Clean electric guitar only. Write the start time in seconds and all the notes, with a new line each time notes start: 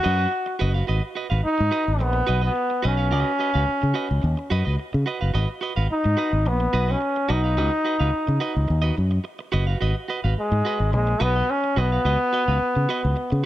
0.03 F#4 B4 D#5
0.18 F#4 B4 D#5
0.32 muted clean electric guitar stroke
0.46 muted clean electric guitar stroke
0.59 F#4 B4 D#5
0.74 F#4 B4 F5
0.87 F#4 B4 D#5
1.15 F#4 B4 D#5
1.30 F#4 B4 F5
1.58 muted clean electric guitar stroke
1.71 F#4 B4 D#5
1.86 muted clean electric guitar stroke
1.99 muted clean electric guitar stroke
2.13 muted clean electric guitar stroke
2.27 F#4 B4 D#5
2.41 F#4 B4 D#5
2.56 muted clean electric guitar stroke
2.70 muted clean electric guitar stroke
2.82 F#4 B4 D#5
2.97 F#4 B4 F5
3.11 F#4 B4 D#5
3.39 F#4 B4 D#5
3.54 F#4 B4 F5
3.82 muted clean electric guitar stroke
3.94 F#4 B4 D#5
4.09 muted clean electric guitar stroke
4.22 muted clean electric guitar stroke
4.37 muted clean electric guitar stroke
4.50 F#4 B4 D#5
4.65 F#4 B4 D#5
4.79 muted clean electric guitar stroke
4.93 muted clean electric guitar stroke
5.06 F#4 B4 D#5
5.21 F#4 B4 F5
5.34 F#4 B4 D#5
5.61 F#4 B4 D#5
5.76 F#4 B4 F5
6.04 muted clean electric guitar stroke
6.17 F#4 B4 D#5
6.33 muted clean electric guitar stroke
6.46 muted clean electric guitar stroke
6.60 muted clean electric guitar stroke
6.73 F#4 B4 D#5
6.88 F#4 B4 D#5
7.01 muted clean electric guitar stroke
7.16 muted clean electric guitar stroke
7.29 F#4 B4 D#5
7.44 F#4 B4 F5
7.57 F#4 B4 D#5
7.85 F#4 B4 D#5
8.00 F#4 B4 F5
8.27 muted clean electric guitar stroke
8.40 F#4 B4 D#5
8.54 muted clean electric guitar stroke
8.68 muted clean electric guitar stroke
8.82 F#4 B4 D#5
8.96 muted clean electric guitar stroke
9.11 muted clean electric guitar stroke
9.24 muted clean electric guitar stroke
9.39 muted clean electric guitar stroke
9.52 F#4 B4 D#5
9.67 F#4 B4 F5
9.81 F#4 B4 D#5
10.08 F#4 B4 D#5
10.24 F#4 B4 F5
10.52 muted clean electric guitar stroke
10.65 F#4 B4 D#5
10.80 muted clean electric guitar stroke
10.92 muted clean electric guitar stroke
11.07 muted clean electric guitar stroke
11.20 F#4 B4 D#5
11.36 F#4 B4 D#5
11.48 muted clean electric guitar stroke
11.64 muted clean electric guitar stroke
11.76 F#4 B4 D#5
11.92 F#4 B4 F5
12.05 F#4 B4 D#5
12.33 F#4 B4 D#5
12.48 F#4 B4 F5
12.76 muted clean electric guitar stroke
12.89 F#4 B4 D#5
13.03 muted clean electric guitar stroke
13.16 muted clean electric guitar stroke
13.30 muted clean electric guitar stroke